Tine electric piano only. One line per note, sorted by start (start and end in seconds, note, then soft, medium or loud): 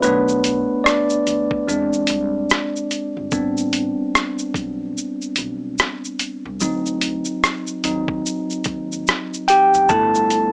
0.02 1.22 A3 medium
0.02 0.82 B3 medium
0.02 0.85 D4 medium
0.02 0.81 B4 medium
0.02 1.23 C#5 medium
0.84 1.67 D4 medium
0.84 2.45 D5 medium
1.67 2.26 G#3 medium
1.67 2.26 C4 soft
1.67 2.26 D4 medium
3.32 6.57 G3 soft
3.32 6.57 B3 medium
3.32 6.57 C4 soft
3.32 6.57 D4 medium
6.61 7.19 F#3 medium
6.61 7.19 C4 soft
6.61 7.19 D#4 medium
7.84 8.21 F#3 soft
7.84 8.21 C4 soft
7.84 8.21 D#4 medium
9.48 9.68 G4 medium
9.48 9.66 G5 loud
9.89 10.48 A3 medium
9.89 10.48 B3 soft
9.89 10.48 E4 medium
9.89 10.52 A4 medium
9.89 10.52 A5 loud